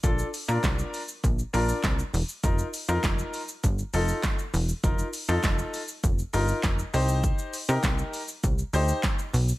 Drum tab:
HH |x-o-x-o-x-o-x-o-|x-o-x-o-x-o-x-o-|x-o-x-o-x-o-x-o-|x-o-x-o-x-o-x-o-|
SH |xxxxxxxxxxxxxxxx|xxxxxxxxxxxxxxxx|xxxxxxxxxxxxxxxx|xxxxxxxxxxxxxxxx|
CP |----x-------x---|----x-------x---|----x-------x---|----x-------x---|
SD |----o-------o---|----o-------o---|----o-------o---|----o-------o---|
BD |o---o---o---o---|o---o---o---o---|o---o---o---o---|o---o---o---o---|